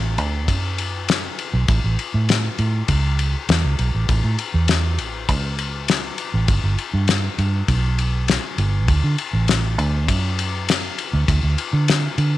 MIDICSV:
0, 0, Header, 1, 3, 480
1, 0, Start_track
1, 0, Key_signature, 2, "major"
1, 0, Tempo, 600000
1, 1350, Time_signature, 4, 2, 24, 8
1, 9903, End_track
2, 0, Start_track
2, 0, Title_t, "Fingered electric bass"
2, 0, Program_c, 0, 33
2, 0, Note_on_c, 0, 33, 92
2, 144, Note_off_c, 0, 33, 0
2, 144, Note_on_c, 0, 38, 92
2, 385, Note_off_c, 0, 38, 0
2, 385, Note_on_c, 0, 42, 100
2, 1022, Note_off_c, 0, 42, 0
2, 1229, Note_on_c, 0, 35, 88
2, 1318, Note_off_c, 0, 35, 0
2, 1348, Note_on_c, 0, 33, 92
2, 1442, Note_off_c, 0, 33, 0
2, 1473, Note_on_c, 0, 33, 90
2, 1561, Note_off_c, 0, 33, 0
2, 1714, Note_on_c, 0, 45, 95
2, 1982, Note_off_c, 0, 45, 0
2, 2071, Note_on_c, 0, 45, 89
2, 2251, Note_off_c, 0, 45, 0
2, 2308, Note_on_c, 0, 37, 96
2, 2671, Note_off_c, 0, 37, 0
2, 2790, Note_on_c, 0, 40, 82
2, 2902, Note_off_c, 0, 40, 0
2, 2917, Note_on_c, 0, 37, 83
2, 3021, Note_off_c, 0, 37, 0
2, 3033, Note_on_c, 0, 35, 85
2, 3143, Note_off_c, 0, 35, 0
2, 3155, Note_on_c, 0, 33, 80
2, 3260, Note_off_c, 0, 33, 0
2, 3269, Note_on_c, 0, 33, 95
2, 3363, Note_off_c, 0, 33, 0
2, 3391, Note_on_c, 0, 45, 76
2, 3480, Note_off_c, 0, 45, 0
2, 3632, Note_on_c, 0, 40, 96
2, 3988, Note_off_c, 0, 40, 0
2, 3988, Note_on_c, 0, 33, 95
2, 4228, Note_off_c, 0, 33, 0
2, 4228, Note_on_c, 0, 37, 93
2, 4864, Note_off_c, 0, 37, 0
2, 5070, Note_on_c, 0, 33, 84
2, 5160, Note_off_c, 0, 33, 0
2, 5187, Note_on_c, 0, 31, 98
2, 5281, Note_off_c, 0, 31, 0
2, 5308, Note_on_c, 0, 31, 90
2, 5398, Note_off_c, 0, 31, 0
2, 5549, Note_on_c, 0, 43, 88
2, 5819, Note_off_c, 0, 43, 0
2, 5908, Note_on_c, 0, 43, 88
2, 6089, Note_off_c, 0, 43, 0
2, 6147, Note_on_c, 0, 35, 106
2, 6690, Note_off_c, 0, 35, 0
2, 6864, Note_on_c, 0, 31, 104
2, 7108, Note_off_c, 0, 31, 0
2, 7108, Note_on_c, 0, 38, 96
2, 7202, Note_off_c, 0, 38, 0
2, 7230, Note_on_c, 0, 50, 84
2, 7319, Note_off_c, 0, 50, 0
2, 7466, Note_on_c, 0, 33, 97
2, 7823, Note_off_c, 0, 33, 0
2, 7823, Note_on_c, 0, 38, 101
2, 8068, Note_off_c, 0, 38, 0
2, 8068, Note_on_c, 0, 42, 102
2, 8703, Note_off_c, 0, 42, 0
2, 8907, Note_on_c, 0, 38, 87
2, 8996, Note_off_c, 0, 38, 0
2, 9026, Note_on_c, 0, 38, 99
2, 9120, Note_off_c, 0, 38, 0
2, 9145, Note_on_c, 0, 38, 94
2, 9235, Note_off_c, 0, 38, 0
2, 9384, Note_on_c, 0, 50, 96
2, 9655, Note_off_c, 0, 50, 0
2, 9743, Note_on_c, 0, 50, 90
2, 9903, Note_off_c, 0, 50, 0
2, 9903, End_track
3, 0, Start_track
3, 0, Title_t, "Drums"
3, 144, Note_on_c, 9, 51, 60
3, 224, Note_off_c, 9, 51, 0
3, 385, Note_on_c, 9, 36, 86
3, 387, Note_on_c, 9, 51, 86
3, 465, Note_off_c, 9, 36, 0
3, 467, Note_off_c, 9, 51, 0
3, 627, Note_on_c, 9, 51, 65
3, 707, Note_off_c, 9, 51, 0
3, 868, Note_on_c, 9, 51, 86
3, 878, Note_on_c, 9, 38, 116
3, 948, Note_off_c, 9, 51, 0
3, 958, Note_off_c, 9, 38, 0
3, 1109, Note_on_c, 9, 51, 58
3, 1189, Note_off_c, 9, 51, 0
3, 1346, Note_on_c, 9, 51, 79
3, 1348, Note_on_c, 9, 36, 108
3, 1426, Note_off_c, 9, 51, 0
3, 1428, Note_off_c, 9, 36, 0
3, 1590, Note_on_c, 9, 51, 58
3, 1670, Note_off_c, 9, 51, 0
3, 1830, Note_on_c, 9, 51, 74
3, 1840, Note_on_c, 9, 38, 105
3, 1910, Note_off_c, 9, 51, 0
3, 1920, Note_off_c, 9, 38, 0
3, 2067, Note_on_c, 9, 51, 53
3, 2147, Note_off_c, 9, 51, 0
3, 2306, Note_on_c, 9, 51, 81
3, 2309, Note_on_c, 9, 36, 85
3, 2386, Note_off_c, 9, 51, 0
3, 2389, Note_off_c, 9, 36, 0
3, 2551, Note_on_c, 9, 51, 66
3, 2631, Note_off_c, 9, 51, 0
3, 2790, Note_on_c, 9, 51, 86
3, 2800, Note_on_c, 9, 38, 114
3, 2870, Note_off_c, 9, 51, 0
3, 2880, Note_off_c, 9, 38, 0
3, 3029, Note_on_c, 9, 51, 58
3, 3109, Note_off_c, 9, 51, 0
3, 3270, Note_on_c, 9, 51, 78
3, 3271, Note_on_c, 9, 36, 108
3, 3350, Note_off_c, 9, 51, 0
3, 3351, Note_off_c, 9, 36, 0
3, 3508, Note_on_c, 9, 51, 65
3, 3588, Note_off_c, 9, 51, 0
3, 3744, Note_on_c, 9, 51, 84
3, 3754, Note_on_c, 9, 38, 102
3, 3824, Note_off_c, 9, 51, 0
3, 3834, Note_off_c, 9, 38, 0
3, 3988, Note_on_c, 9, 51, 61
3, 4068, Note_off_c, 9, 51, 0
3, 4230, Note_on_c, 9, 36, 88
3, 4231, Note_on_c, 9, 51, 84
3, 4310, Note_off_c, 9, 36, 0
3, 4311, Note_off_c, 9, 51, 0
3, 4468, Note_on_c, 9, 51, 65
3, 4548, Note_off_c, 9, 51, 0
3, 4707, Note_on_c, 9, 51, 90
3, 4717, Note_on_c, 9, 38, 118
3, 4787, Note_off_c, 9, 51, 0
3, 4797, Note_off_c, 9, 38, 0
3, 4943, Note_on_c, 9, 51, 61
3, 5023, Note_off_c, 9, 51, 0
3, 5185, Note_on_c, 9, 51, 84
3, 5187, Note_on_c, 9, 36, 106
3, 5265, Note_off_c, 9, 51, 0
3, 5267, Note_off_c, 9, 36, 0
3, 5427, Note_on_c, 9, 51, 57
3, 5507, Note_off_c, 9, 51, 0
3, 5661, Note_on_c, 9, 51, 78
3, 5671, Note_on_c, 9, 38, 107
3, 5741, Note_off_c, 9, 51, 0
3, 5751, Note_off_c, 9, 38, 0
3, 5908, Note_on_c, 9, 51, 56
3, 5988, Note_off_c, 9, 51, 0
3, 6147, Note_on_c, 9, 36, 85
3, 6147, Note_on_c, 9, 51, 78
3, 6227, Note_off_c, 9, 36, 0
3, 6227, Note_off_c, 9, 51, 0
3, 6388, Note_on_c, 9, 51, 64
3, 6468, Note_off_c, 9, 51, 0
3, 6626, Note_on_c, 9, 51, 79
3, 6636, Note_on_c, 9, 38, 112
3, 6706, Note_off_c, 9, 51, 0
3, 6716, Note_off_c, 9, 38, 0
3, 6865, Note_on_c, 9, 51, 62
3, 6945, Note_off_c, 9, 51, 0
3, 7106, Note_on_c, 9, 51, 81
3, 7107, Note_on_c, 9, 36, 109
3, 7186, Note_off_c, 9, 51, 0
3, 7187, Note_off_c, 9, 36, 0
3, 7347, Note_on_c, 9, 51, 63
3, 7427, Note_off_c, 9, 51, 0
3, 7584, Note_on_c, 9, 51, 81
3, 7594, Note_on_c, 9, 38, 106
3, 7664, Note_off_c, 9, 51, 0
3, 7674, Note_off_c, 9, 38, 0
3, 7830, Note_on_c, 9, 51, 60
3, 7910, Note_off_c, 9, 51, 0
3, 8068, Note_on_c, 9, 36, 88
3, 8069, Note_on_c, 9, 51, 92
3, 8148, Note_off_c, 9, 36, 0
3, 8149, Note_off_c, 9, 51, 0
3, 8310, Note_on_c, 9, 51, 74
3, 8390, Note_off_c, 9, 51, 0
3, 8549, Note_on_c, 9, 51, 95
3, 8559, Note_on_c, 9, 38, 119
3, 8629, Note_off_c, 9, 51, 0
3, 8639, Note_off_c, 9, 38, 0
3, 8787, Note_on_c, 9, 51, 66
3, 8867, Note_off_c, 9, 51, 0
3, 9026, Note_on_c, 9, 36, 104
3, 9027, Note_on_c, 9, 51, 86
3, 9106, Note_off_c, 9, 36, 0
3, 9107, Note_off_c, 9, 51, 0
3, 9265, Note_on_c, 9, 51, 66
3, 9345, Note_off_c, 9, 51, 0
3, 9506, Note_on_c, 9, 51, 82
3, 9516, Note_on_c, 9, 38, 102
3, 9586, Note_off_c, 9, 51, 0
3, 9596, Note_off_c, 9, 38, 0
3, 9744, Note_on_c, 9, 51, 59
3, 9824, Note_off_c, 9, 51, 0
3, 9903, End_track
0, 0, End_of_file